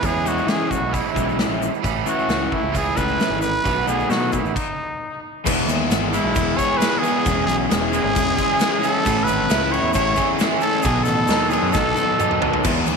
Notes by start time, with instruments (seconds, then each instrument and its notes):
0.01 picked electric bass E2, overdriven electric guitar E3 G#3 C#4 E4, kick, open hi-hat, shaker
0.05 trumpet G#4
0.25 overdriven electric guitar E3 G#3 C#4 E4, trumpet F#4, shaker
0.38 shaker
0.47 picked electric bass E3, overdriven electric guitar E3 G#3 C#4 E4, trumpet G#4, snare, open hi-hat, shaker
0.71 trumpet F#4, kick, shaker
0.80 picked electric bass B1
0.91 overdriven electric guitar E3 G#3 C#4 E4, trumpet E4, kick, open hi-hat, shaker
1.15 picked electric bass B1, overdriven electric guitar E3 G#3 C#4 E4, kick, shaker
1.29 shaker
1.38 overdriven electric guitar E3 G#3 C#4 E4, snare, open hi-hat, shaker
1.48 picked electric bass A#1
1.62 shaker
1.74 shaker
1.82 picked electric bass A1, overdriven electric guitar A2 E3 A3 C#4 E4, kick, open hi-hat, shaker
2.06 overdriven electric guitar E3 A3 C#4 E4, trumpet F#4, shaker
2.19 shaker
2.28 picked electric bass C#2, overdriven electric guitar E3 A3 C#4 E4, snare, open hi-hat, shaker
2.52 trumpet E4, kick
2.63 picked electric bass C#2
2.72 overdriven electric guitar A2 E3 A3 C#4 E4, kick, open hi-hat, shaker
2.77 trumpet G#4
2.96 picked electric bass C#2, overdriven electric guitar E3 A3 C#4 E4, trumpet B4, kick, shaker
3.08 shaker
3.18 overdriven electric guitar E3 A3 C#4 E4, snare, open hi-hat, shaker
3.30 picked electric bass G#1
3.41 trumpet B4, shaker
3.54 shaker
3.63 picked electric bass B1, overdriven electric guitar B2 D#3 A3 B3 F#4, kick, open hi-hat, shaker
3.87 overdriven electric guitar B2 F#3 A3 D#4, trumpet G#4, shaker
4.00 shaker
4.09 overdriven electric guitar B2 F#3 A3 D#4, picked electric bass B2, trumpet F#4, snare, open hi-hat, shaker
4.32 trumpet E4, kick, shaker
4.44 picked electric bass A1, shaker
4.55 trumpet D#4, kick, crash
5.44 picked electric bass E1, overdriven electric guitar E2 E3 G#3 B3 E4, kick, crash, shaker
5.66 picked electric bass D#2, overdriven electric guitar G#3 B3 E4, crash, shaker
5.90 picked electric bass G#1, overdriven electric guitar E3 G#3 B3 E4, snare, crash, shaker
6.13 overdriven electric guitar G#3 B3 E4, trumpet E4, crash, shaker
6.24 picked electric bass B1
6.35 picked electric bass E1, overdriven electric guitar E3 G#3 B3 E4, kick, crash, shaker
6.57 overdriven electric guitar G#3 B3 E4 G#4, trumpet C#5, kick, crash, shaker
6.61 overdriven electric guitar E3
6.77 trumpet B4
6.81 overdriven electric guitar E3 G#3 B3 E4, snare, crash, shaker
6.99 overdriven electric guitar B3, trumpet G#4
7.03 overdriven electric guitar G#3 B3 E4, crash, shaker
7.25 picked electric bass E1, overdriven electric guitar E2 E3 G#3 C#4, kick, crash, shaker
7.29 overdriven electric guitar E4
7.46 picked electric bass B1, overdriven electric guitar E4, trumpet G#4, crash, shaker
7.50 overdriven electric guitar G#3 C#4
7.67 picked electric bass E1, overdriven electric guitar E3 G#3, trumpet G#4, crash, shaker
7.71 overdriven electric guitar C#4 E4, snare
7.93 overdriven electric guitar G#3 C#4 E4, crash, shaker
8.04 picked electric bass G#1
8.16 picked electric bass E1, overdriven electric guitar E3 G#3 C#4 E4, kick, crash, shaker
8.37 overdriven electric guitar E3 G#3 C#4 E4 G#4, kick, crash, shaker
8.59 overdriven electric guitar E3 G#3 C#4 E4, snare, crash, shaker
8.79 overdriven electric guitar C#4 E4, trumpet G#4
8.83 overdriven electric guitar G#3 C#4, crash, shaker
8.90 trumpet A4
9.04 picked electric bass A1, overdriven electric guitar A2 E3 A3 C#4 E4, kick, crash, shaker
9.23 overdriven electric guitar E4, trumpet B4
9.28 picked electric bass G#1, overdriven electric guitar A3 C#4, crash, shaker
9.48 picked electric bass C#2, overdriven electric guitar A2 E3 A3 C#4 E4, snare, crash, shaker
9.70 overdriven electric guitar A3 C#4 E4, trumpet C#5, crash
9.83 picked electric bass E2
9.93 picked electric bass A1, overdriven electric guitar E3 A3 C#4 E4, trumpet C#5, kick, crash, shaker
10.15 overdriven electric guitar A2 E3 A3 C#4 E4 G#4, kick, crash, shaker
10.37 overdriven electric guitar E3 A3 C#4 E4, snare, crash, shaker
10.61 overdriven electric guitar A3 C#4 E4, trumpet A4, crash, shaker
10.82 picked electric bass B1, overdriven electric guitar B2 D#3 F#3 B3 D#4 A4, trumpet G#4, kick, crash, shaker
11.03 picked electric bass A1, overdriven electric guitar D#4 A4, trumpet A4, shaker
11.08 overdriven electric guitar F#3 B3, crash
11.27 picked electric bass D#2, overdriven electric guitar B2 D#3 F#3 B3 D#4 A4, snare, crash, shaker
11.49 overdriven electric guitar F#3 D#4 A4, trumpet G#4, shaker
11.53 overdriven electric guitar F#3 B3, crash
11.62 picked electric bass F#2
11.72 picked electric bass B1, overdriven electric guitar F#3 B3 D#4, trumpet A4, kick, snare, shaker
11.76 overdriven electric guitar A4
11.95 overdriven electric guitar B2 D#3 F#3 B3 D#4 A4, high tom, shaker
12.19 overdriven electric guitar F#3 B3 D#4 A4, mid tom, shaker
12.31 mid tom
12.41 overdriven electric guitar F#3 B3 D#4 A4, floor tom
12.53 floor tom
12.64 overdriven electric guitar E2 E3 G#3 B3 E4, picked electric bass E2, kick, crash, shaker
12.86 picked electric bass D#2, overdriven electric guitar G#3 B3 E4, crash, shaker